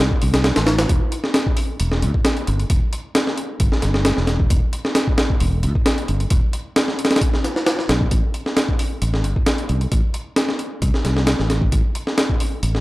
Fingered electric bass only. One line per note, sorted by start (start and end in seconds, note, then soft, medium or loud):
0.23 0.51 C2 medium
0.57 0.84 A1 medium
0.90 0.98 E1 loud
1.80 2.04 E1 loud
2.03 2.11 D2 loud
2.48 2.63 G1 loud
2.70 2.78 E1 loud
3.60 3.68 G1 medium
3.83 4.11 G1 medium
4.18 4.45 E1 medium
4.51 4.59 E1 loud
5.41 5.66 E1 loud
5.64 5.72 D2 loud
6.09 6.24 G1 loud
6.31 6.39 E1 loud
7.89 8.05 B1 medium
8.12 8.20 A1 loud
9.02 9.25 A1 medium
9.25 9.32 G1 loud
9.69 9.85 C2 loud
9.92 10.00 A1 loud
10.82 10.90 C2 medium
11.05 11.33 C2 medium
11.40 11.67 A1 medium
11.72 11.80 A1 loud
12.63 12.81 A1 medium